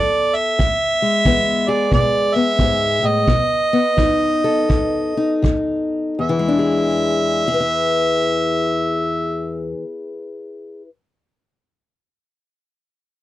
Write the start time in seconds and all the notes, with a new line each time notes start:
Already playing: F#3 B3 A4 D5
0.35 E5
0.59 E2, kick
1.02 G#3
1.25 E3 B3, kick
1.68 G#4 D5
1.92 B2 D5, kick
2.35 B3 E5
2.59 G#2, kick
3.03 A2 D#5
3.28 B2, kick
3.73 B3
3.97 F#3 D#4, kick
4.44 A4
4.69 F#2, kick
5.17 D#4
5.42 F#3, kick
6.19 E2 E5
6.29 E3
6.39 G#3
6.48 D4
6.59 G#4
7.48 G#4
7.54 B4
7.60 E5